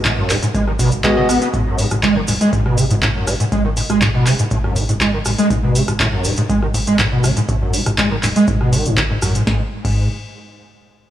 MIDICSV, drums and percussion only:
0, 0, Header, 1, 2, 480
1, 0, Start_track
1, 0, Tempo, 495868
1, 1488, Time_signature, 4, 2, 24, 8
1, 10745, End_track
2, 0, Start_track
2, 0, Title_t, "Drums"
2, 46, Note_on_c, 9, 39, 115
2, 47, Note_on_c, 9, 42, 49
2, 48, Note_on_c, 9, 36, 116
2, 50, Note_on_c, 9, 69, 37
2, 142, Note_off_c, 9, 39, 0
2, 144, Note_off_c, 9, 42, 0
2, 145, Note_off_c, 9, 36, 0
2, 147, Note_off_c, 9, 69, 0
2, 287, Note_on_c, 9, 39, 59
2, 288, Note_on_c, 9, 46, 96
2, 290, Note_on_c, 9, 69, 91
2, 383, Note_off_c, 9, 39, 0
2, 385, Note_off_c, 9, 46, 0
2, 386, Note_off_c, 9, 69, 0
2, 413, Note_on_c, 9, 42, 61
2, 413, Note_on_c, 9, 69, 55
2, 510, Note_off_c, 9, 42, 0
2, 510, Note_off_c, 9, 69, 0
2, 528, Note_on_c, 9, 36, 126
2, 528, Note_on_c, 9, 42, 49
2, 532, Note_on_c, 9, 69, 41
2, 625, Note_off_c, 9, 36, 0
2, 625, Note_off_c, 9, 42, 0
2, 629, Note_off_c, 9, 69, 0
2, 653, Note_on_c, 9, 37, 38
2, 750, Note_off_c, 9, 37, 0
2, 768, Note_on_c, 9, 36, 86
2, 768, Note_on_c, 9, 46, 105
2, 768, Note_on_c, 9, 69, 91
2, 865, Note_off_c, 9, 36, 0
2, 865, Note_off_c, 9, 46, 0
2, 865, Note_off_c, 9, 69, 0
2, 885, Note_on_c, 9, 69, 50
2, 893, Note_on_c, 9, 42, 59
2, 982, Note_off_c, 9, 69, 0
2, 990, Note_off_c, 9, 42, 0
2, 1006, Note_on_c, 9, 69, 40
2, 1007, Note_on_c, 9, 39, 114
2, 1008, Note_on_c, 9, 36, 124
2, 1009, Note_on_c, 9, 42, 50
2, 1103, Note_off_c, 9, 69, 0
2, 1104, Note_off_c, 9, 39, 0
2, 1105, Note_off_c, 9, 36, 0
2, 1105, Note_off_c, 9, 42, 0
2, 1248, Note_on_c, 9, 37, 57
2, 1248, Note_on_c, 9, 46, 96
2, 1253, Note_on_c, 9, 69, 85
2, 1345, Note_off_c, 9, 37, 0
2, 1345, Note_off_c, 9, 46, 0
2, 1350, Note_off_c, 9, 69, 0
2, 1372, Note_on_c, 9, 42, 62
2, 1372, Note_on_c, 9, 69, 50
2, 1468, Note_off_c, 9, 69, 0
2, 1469, Note_off_c, 9, 42, 0
2, 1488, Note_on_c, 9, 36, 116
2, 1488, Note_on_c, 9, 42, 49
2, 1488, Note_on_c, 9, 69, 39
2, 1585, Note_off_c, 9, 36, 0
2, 1585, Note_off_c, 9, 42, 0
2, 1585, Note_off_c, 9, 69, 0
2, 1728, Note_on_c, 9, 46, 102
2, 1728, Note_on_c, 9, 69, 87
2, 1824, Note_off_c, 9, 69, 0
2, 1825, Note_off_c, 9, 46, 0
2, 1845, Note_on_c, 9, 69, 52
2, 1853, Note_on_c, 9, 36, 58
2, 1853, Note_on_c, 9, 37, 62
2, 1853, Note_on_c, 9, 42, 66
2, 1942, Note_off_c, 9, 69, 0
2, 1949, Note_off_c, 9, 36, 0
2, 1949, Note_off_c, 9, 37, 0
2, 1949, Note_off_c, 9, 42, 0
2, 1965, Note_on_c, 9, 69, 40
2, 1966, Note_on_c, 9, 39, 108
2, 1968, Note_on_c, 9, 36, 116
2, 1968, Note_on_c, 9, 42, 49
2, 2061, Note_off_c, 9, 69, 0
2, 2063, Note_off_c, 9, 39, 0
2, 2065, Note_off_c, 9, 36, 0
2, 2065, Note_off_c, 9, 42, 0
2, 2204, Note_on_c, 9, 69, 90
2, 2208, Note_on_c, 9, 46, 92
2, 2301, Note_off_c, 9, 69, 0
2, 2305, Note_off_c, 9, 46, 0
2, 2333, Note_on_c, 9, 42, 61
2, 2338, Note_on_c, 9, 69, 53
2, 2430, Note_off_c, 9, 42, 0
2, 2435, Note_off_c, 9, 69, 0
2, 2448, Note_on_c, 9, 36, 124
2, 2448, Note_on_c, 9, 42, 49
2, 2452, Note_on_c, 9, 69, 38
2, 2545, Note_off_c, 9, 36, 0
2, 2545, Note_off_c, 9, 42, 0
2, 2549, Note_off_c, 9, 69, 0
2, 2573, Note_on_c, 9, 37, 40
2, 2670, Note_off_c, 9, 37, 0
2, 2688, Note_on_c, 9, 36, 83
2, 2688, Note_on_c, 9, 46, 100
2, 2689, Note_on_c, 9, 69, 93
2, 2785, Note_off_c, 9, 36, 0
2, 2785, Note_off_c, 9, 46, 0
2, 2786, Note_off_c, 9, 69, 0
2, 2812, Note_on_c, 9, 69, 51
2, 2813, Note_on_c, 9, 42, 62
2, 2908, Note_off_c, 9, 69, 0
2, 2910, Note_off_c, 9, 42, 0
2, 2928, Note_on_c, 9, 36, 119
2, 2928, Note_on_c, 9, 39, 115
2, 2929, Note_on_c, 9, 42, 50
2, 2931, Note_on_c, 9, 69, 36
2, 3024, Note_off_c, 9, 39, 0
2, 3025, Note_off_c, 9, 36, 0
2, 3026, Note_off_c, 9, 42, 0
2, 3028, Note_off_c, 9, 69, 0
2, 3169, Note_on_c, 9, 37, 60
2, 3169, Note_on_c, 9, 46, 90
2, 3169, Note_on_c, 9, 69, 92
2, 3265, Note_off_c, 9, 69, 0
2, 3266, Note_off_c, 9, 37, 0
2, 3266, Note_off_c, 9, 46, 0
2, 3294, Note_on_c, 9, 42, 62
2, 3297, Note_on_c, 9, 69, 46
2, 3390, Note_off_c, 9, 42, 0
2, 3394, Note_off_c, 9, 69, 0
2, 3408, Note_on_c, 9, 36, 116
2, 3409, Note_on_c, 9, 42, 50
2, 3410, Note_on_c, 9, 69, 41
2, 3505, Note_off_c, 9, 36, 0
2, 3505, Note_off_c, 9, 42, 0
2, 3507, Note_off_c, 9, 69, 0
2, 3646, Note_on_c, 9, 69, 83
2, 3648, Note_on_c, 9, 46, 101
2, 3743, Note_off_c, 9, 69, 0
2, 3745, Note_off_c, 9, 46, 0
2, 3769, Note_on_c, 9, 69, 44
2, 3773, Note_on_c, 9, 36, 59
2, 3774, Note_on_c, 9, 37, 60
2, 3774, Note_on_c, 9, 42, 66
2, 3866, Note_off_c, 9, 69, 0
2, 3870, Note_off_c, 9, 36, 0
2, 3870, Note_off_c, 9, 37, 0
2, 3870, Note_off_c, 9, 42, 0
2, 3887, Note_on_c, 9, 39, 113
2, 3888, Note_on_c, 9, 36, 113
2, 3888, Note_on_c, 9, 69, 41
2, 3889, Note_on_c, 9, 42, 53
2, 3984, Note_off_c, 9, 39, 0
2, 3984, Note_off_c, 9, 69, 0
2, 3985, Note_off_c, 9, 36, 0
2, 3986, Note_off_c, 9, 42, 0
2, 4127, Note_on_c, 9, 39, 59
2, 4128, Note_on_c, 9, 69, 80
2, 4129, Note_on_c, 9, 46, 92
2, 4224, Note_off_c, 9, 39, 0
2, 4224, Note_off_c, 9, 69, 0
2, 4225, Note_off_c, 9, 46, 0
2, 4250, Note_on_c, 9, 69, 56
2, 4253, Note_on_c, 9, 42, 65
2, 4346, Note_off_c, 9, 69, 0
2, 4350, Note_off_c, 9, 42, 0
2, 4363, Note_on_c, 9, 69, 38
2, 4369, Note_on_c, 9, 36, 117
2, 4369, Note_on_c, 9, 42, 52
2, 4460, Note_off_c, 9, 69, 0
2, 4465, Note_off_c, 9, 36, 0
2, 4466, Note_off_c, 9, 42, 0
2, 4494, Note_on_c, 9, 37, 41
2, 4590, Note_off_c, 9, 37, 0
2, 4608, Note_on_c, 9, 36, 80
2, 4608, Note_on_c, 9, 69, 79
2, 4609, Note_on_c, 9, 46, 98
2, 4705, Note_off_c, 9, 36, 0
2, 4705, Note_off_c, 9, 69, 0
2, 4706, Note_off_c, 9, 46, 0
2, 4734, Note_on_c, 9, 42, 64
2, 4735, Note_on_c, 9, 69, 54
2, 4831, Note_off_c, 9, 42, 0
2, 4832, Note_off_c, 9, 69, 0
2, 4847, Note_on_c, 9, 39, 111
2, 4848, Note_on_c, 9, 36, 110
2, 4849, Note_on_c, 9, 42, 53
2, 4854, Note_on_c, 9, 69, 35
2, 4944, Note_off_c, 9, 39, 0
2, 4945, Note_off_c, 9, 36, 0
2, 4946, Note_off_c, 9, 42, 0
2, 4950, Note_off_c, 9, 69, 0
2, 5084, Note_on_c, 9, 69, 87
2, 5088, Note_on_c, 9, 37, 63
2, 5088, Note_on_c, 9, 46, 86
2, 5181, Note_off_c, 9, 69, 0
2, 5185, Note_off_c, 9, 37, 0
2, 5185, Note_off_c, 9, 46, 0
2, 5213, Note_on_c, 9, 42, 64
2, 5214, Note_on_c, 9, 69, 53
2, 5309, Note_off_c, 9, 42, 0
2, 5310, Note_off_c, 9, 69, 0
2, 5328, Note_on_c, 9, 36, 110
2, 5329, Note_on_c, 9, 42, 53
2, 5333, Note_on_c, 9, 69, 43
2, 5425, Note_off_c, 9, 36, 0
2, 5425, Note_off_c, 9, 42, 0
2, 5429, Note_off_c, 9, 69, 0
2, 5568, Note_on_c, 9, 46, 95
2, 5571, Note_on_c, 9, 69, 89
2, 5665, Note_off_c, 9, 46, 0
2, 5668, Note_off_c, 9, 69, 0
2, 5692, Note_on_c, 9, 37, 64
2, 5692, Note_on_c, 9, 42, 67
2, 5693, Note_on_c, 9, 36, 55
2, 5693, Note_on_c, 9, 69, 49
2, 5789, Note_off_c, 9, 36, 0
2, 5789, Note_off_c, 9, 37, 0
2, 5789, Note_off_c, 9, 42, 0
2, 5790, Note_off_c, 9, 69, 0
2, 5806, Note_on_c, 9, 39, 113
2, 5808, Note_on_c, 9, 36, 115
2, 5808, Note_on_c, 9, 42, 52
2, 5812, Note_on_c, 9, 69, 41
2, 5903, Note_off_c, 9, 39, 0
2, 5905, Note_off_c, 9, 36, 0
2, 5905, Note_off_c, 9, 42, 0
2, 5908, Note_off_c, 9, 69, 0
2, 6043, Note_on_c, 9, 69, 77
2, 6048, Note_on_c, 9, 46, 88
2, 6140, Note_off_c, 9, 69, 0
2, 6145, Note_off_c, 9, 46, 0
2, 6160, Note_on_c, 9, 69, 47
2, 6173, Note_on_c, 9, 42, 66
2, 6257, Note_off_c, 9, 69, 0
2, 6270, Note_off_c, 9, 42, 0
2, 6288, Note_on_c, 9, 36, 114
2, 6288, Note_on_c, 9, 42, 54
2, 6290, Note_on_c, 9, 69, 41
2, 6385, Note_off_c, 9, 36, 0
2, 6385, Note_off_c, 9, 42, 0
2, 6387, Note_off_c, 9, 69, 0
2, 6413, Note_on_c, 9, 37, 44
2, 6510, Note_off_c, 9, 37, 0
2, 6528, Note_on_c, 9, 36, 76
2, 6528, Note_on_c, 9, 46, 97
2, 6529, Note_on_c, 9, 69, 75
2, 6624, Note_off_c, 9, 46, 0
2, 6625, Note_off_c, 9, 36, 0
2, 6625, Note_off_c, 9, 69, 0
2, 6648, Note_on_c, 9, 69, 48
2, 6652, Note_on_c, 9, 42, 67
2, 6745, Note_off_c, 9, 69, 0
2, 6749, Note_off_c, 9, 42, 0
2, 6766, Note_on_c, 9, 39, 115
2, 6768, Note_on_c, 9, 36, 111
2, 6768, Note_on_c, 9, 42, 57
2, 6768, Note_on_c, 9, 69, 43
2, 6863, Note_off_c, 9, 39, 0
2, 6864, Note_off_c, 9, 42, 0
2, 6865, Note_off_c, 9, 36, 0
2, 6865, Note_off_c, 9, 69, 0
2, 7006, Note_on_c, 9, 69, 87
2, 7008, Note_on_c, 9, 37, 63
2, 7008, Note_on_c, 9, 46, 89
2, 7103, Note_off_c, 9, 69, 0
2, 7104, Note_off_c, 9, 37, 0
2, 7104, Note_off_c, 9, 46, 0
2, 7132, Note_on_c, 9, 42, 68
2, 7133, Note_on_c, 9, 69, 46
2, 7229, Note_off_c, 9, 42, 0
2, 7230, Note_off_c, 9, 69, 0
2, 7246, Note_on_c, 9, 69, 37
2, 7248, Note_on_c, 9, 36, 117
2, 7248, Note_on_c, 9, 42, 56
2, 7343, Note_off_c, 9, 69, 0
2, 7344, Note_off_c, 9, 42, 0
2, 7345, Note_off_c, 9, 36, 0
2, 7487, Note_on_c, 9, 46, 101
2, 7488, Note_on_c, 9, 69, 81
2, 7584, Note_off_c, 9, 46, 0
2, 7585, Note_off_c, 9, 69, 0
2, 7612, Note_on_c, 9, 37, 62
2, 7612, Note_on_c, 9, 42, 70
2, 7613, Note_on_c, 9, 36, 57
2, 7615, Note_on_c, 9, 69, 51
2, 7709, Note_off_c, 9, 36, 0
2, 7709, Note_off_c, 9, 37, 0
2, 7709, Note_off_c, 9, 42, 0
2, 7712, Note_off_c, 9, 69, 0
2, 7726, Note_on_c, 9, 39, 116
2, 7727, Note_on_c, 9, 42, 55
2, 7728, Note_on_c, 9, 36, 112
2, 7728, Note_on_c, 9, 69, 34
2, 7822, Note_off_c, 9, 39, 0
2, 7824, Note_off_c, 9, 42, 0
2, 7825, Note_off_c, 9, 36, 0
2, 7825, Note_off_c, 9, 69, 0
2, 7966, Note_on_c, 9, 39, 61
2, 7968, Note_on_c, 9, 46, 86
2, 7970, Note_on_c, 9, 69, 80
2, 8063, Note_off_c, 9, 39, 0
2, 8064, Note_off_c, 9, 46, 0
2, 8067, Note_off_c, 9, 69, 0
2, 8092, Note_on_c, 9, 42, 69
2, 8098, Note_on_c, 9, 69, 44
2, 8189, Note_off_c, 9, 42, 0
2, 8195, Note_off_c, 9, 69, 0
2, 8203, Note_on_c, 9, 69, 38
2, 8208, Note_on_c, 9, 36, 120
2, 8208, Note_on_c, 9, 42, 53
2, 8300, Note_off_c, 9, 69, 0
2, 8305, Note_off_c, 9, 36, 0
2, 8305, Note_off_c, 9, 42, 0
2, 8333, Note_on_c, 9, 37, 42
2, 8429, Note_off_c, 9, 37, 0
2, 8448, Note_on_c, 9, 36, 78
2, 8448, Note_on_c, 9, 46, 103
2, 8451, Note_on_c, 9, 69, 86
2, 8545, Note_off_c, 9, 36, 0
2, 8545, Note_off_c, 9, 46, 0
2, 8547, Note_off_c, 9, 69, 0
2, 8573, Note_on_c, 9, 42, 67
2, 8575, Note_on_c, 9, 69, 51
2, 8670, Note_off_c, 9, 42, 0
2, 8672, Note_off_c, 9, 69, 0
2, 8687, Note_on_c, 9, 39, 122
2, 8688, Note_on_c, 9, 36, 115
2, 8688, Note_on_c, 9, 42, 55
2, 8691, Note_on_c, 9, 69, 39
2, 8783, Note_off_c, 9, 39, 0
2, 8785, Note_off_c, 9, 36, 0
2, 8785, Note_off_c, 9, 42, 0
2, 8788, Note_off_c, 9, 69, 0
2, 8926, Note_on_c, 9, 69, 89
2, 8928, Note_on_c, 9, 37, 62
2, 8928, Note_on_c, 9, 46, 87
2, 9023, Note_off_c, 9, 69, 0
2, 9025, Note_off_c, 9, 37, 0
2, 9025, Note_off_c, 9, 46, 0
2, 9052, Note_on_c, 9, 42, 71
2, 9052, Note_on_c, 9, 69, 53
2, 9149, Note_off_c, 9, 42, 0
2, 9149, Note_off_c, 9, 69, 0
2, 9168, Note_on_c, 9, 36, 110
2, 9168, Note_on_c, 9, 38, 85
2, 9265, Note_off_c, 9, 36, 0
2, 9265, Note_off_c, 9, 38, 0
2, 9533, Note_on_c, 9, 36, 111
2, 9533, Note_on_c, 9, 49, 85
2, 9629, Note_off_c, 9, 36, 0
2, 9630, Note_off_c, 9, 49, 0
2, 10745, End_track
0, 0, End_of_file